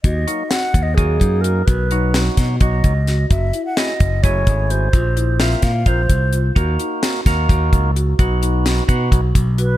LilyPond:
<<
  \new Staff \with { instrumentName = "Flute" } { \time 7/8 \key ces \major \tempo 4 = 129 ees''4 ges''8. ees''16 aes'4 bes'8 | b'4 r4 dis''4. | fes''8. ges''16 ees''4 des''4 c''8~ | c''4 fes''8 f''8 c''4 r8 |
r2. r8 | r2. b'8 | }
  \new Staff \with { instrumentName = "Marimba" } { \time 7/8 \key ces \major ges'8 ees'8 ges'4 ges'4 ges'8 | fis'8 dis'8 fis'4 fis'4 fis'8 | ges'8 fes'8 ges'4 ges'4 ges'8 | f'8 fes'8 f'4 f'4 f'8 |
ges'8 ees'8 ges'4 ges'4 ges'8 | fis'8 dis'8 fis'4 fis'4 fis'8 | }
  \new Staff \with { instrumentName = "Tonewheel organ" } { \time 7/8 \key ces \major r8 <ges bes ees' ges'>8 r4 <ges bes ees' aes'>4. | r8 <fis b dis' fis'>4. <fis b dis' fis'>8 r4 | r4 <a des' fes' aes'>8 r8 <a des' fes' aes'>4. | r4 <bes c' f' bes'>8 r8 <bes c' f' bes'>8 r4 |
<bes ees' ges' bes'>4. <bes ees' ges' bes'>4. r8 | <b dis' fis' b'>4. <b dis' fis' b'>8 r4. | }
  \new Staff \with { instrumentName = "Picked electric bass" } { \clef bass \time 7/8 \key ces \major ees,8 r4 ees,8 ees,8 ges,4 | b,,4. b,8 b,,8 des,4 | ges,,8 r4 ges,,8 ges,,8 aes,,4 | bes,,4. bes,8 bes,,8 c,4 |
ees,8 r4 ees,8 ees,8 des,4 | b,,4. b,8 b,,8 b,,4 | }
  \new DrumStaff \with { instrumentName = "Drums" } \drummode { \time 7/8 <hh bd>8 hh8 <hh sn>8 <hh bd>8 <hh bd>8 <hh bd>8 hh8 | <hh bd>8 hh8 <hh sn>8 <hh bd sn>8 <hh bd>8 <hh bd>8 <hh sn>8 | <hh bd>8 hh8 <hh sn>8 <hh bd>8 <hh bd>8 <hh bd>8 hh8 | <hh bd>8 hh8 <hh sn>8 <hh bd sn>8 <hh bd>8 <hh bd>8 hh8 |
<hh bd>8 hh8 <hh sn>8 <hh bd sn>8 <hh bd>8 <hh bd>8 hh8 | <hh bd>8 hh8 <hh sn>8 <hh bd>8 <hh bd>8 <hh bd>8 hh8 | }
>>